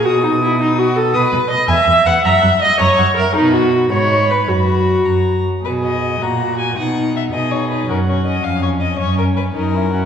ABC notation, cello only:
X:1
M:6/8
L:1/8
Q:3/8=108
K:Bmix
V:1 name="Cello" clef=bass
B,,6 | [K:B] B,, B,, z E,, E,, E,, | F,, F,, z F,, F,, F,, | B,,3 G,,3 |
F,,3 F,,2 z | B,,3 A,,3 | B,,3 B,,3 | F,,3 ^E,,3 |
F,,3 F,,3 |]